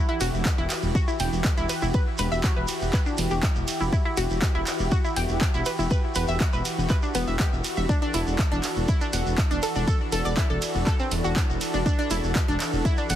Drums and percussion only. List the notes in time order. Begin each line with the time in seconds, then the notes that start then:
0.21 open hi-hat, ride, shekere
0.34 shekere
0.45 kick, clap, shekere
0.70 clap, open hi-hat, ride, shekere
0.82 shekere
0.95 kick, shekere
1.08 shekere
1.19 open hi-hat, ride, shekere
1.33 shekere
1.45 kick, clap, shekere
1.57 shekere
1.69 open hi-hat, ride, shekere
1.82 shekere
1.93 kick, shekere
2.18 open hi-hat, ride, shekere
2.32 shekere
2.43 kick, clap, shekere
2.68 open hi-hat, ride, shekere
2.81 shekere
2.93 kick, clap, shekere
3.06 shekere
3.18 open hi-hat, ride, shekere
3.30 shekere
3.42 kick, clap, shekere
3.55 shekere
3.68 open hi-hat, ride, shekere
3.81 shekere
3.93 kick, shekere
4.17 open hi-hat, ride, shekere
4.30 shekere
4.42 kick, clap, shekere
4.67 clap, open hi-hat, ride, shekere
4.79 shekere
4.91 kick, shekere
5.05 shekere
5.16 open hi-hat, ride, shekere
5.29 shekere
5.41 kick, clap, shekere
5.54 shekere
5.65 open hi-hat, ride, shekere
5.79 shekere
5.91 kick, shekere
6.15 open hi-hat, ride, shekere
6.27 shekere
6.40 kick, clap, shekere
6.53 shekere
6.65 open hi-hat, ride, shekere
6.79 shekere
6.90 kick, clap, shekere
7.03 shekere
7.15 open hi-hat, ride, shekere
7.27 shekere
7.40 kick, clap, shekere
7.53 shekere
7.64 open hi-hat, ride, shekere
7.76 shekere
7.89 kick, shekere
8.14 open hi-hat, ride, shekere
8.27 shekere
8.39 kick, clap, shekere
8.63 clap, open hi-hat, ride, shekere
8.76 shekere
8.88 kick, shekere
9.01 shekere
9.13 open hi-hat, ride, shekere
9.26 shekere
9.38 kick, clap, shekere
9.51 shekere
9.63 open hi-hat, ride, shekere
9.75 shekere
9.87 kick, shekere
10.12 open hi-hat, ride, shekere
10.25 shekere
10.36 kick, clap, shekere
10.62 open hi-hat, ride, shekere
10.75 shekere
10.87 kick, clap, shekere
11.00 shekere
11.11 open hi-hat, ride, shekere
11.24 shekere
11.36 kick, clap, shekere
11.50 shekere
11.61 open hi-hat, ride, shekere
11.74 shekere
11.86 kick, shekere
12.10 open hi-hat, ride, shekere
12.24 shekere
12.35 kick, clap, shekere
12.60 clap, open hi-hat, ride, shekere
12.73 shekere
12.85 kick, shekere
12.97 shekere
13.10 open hi-hat, ride, shekere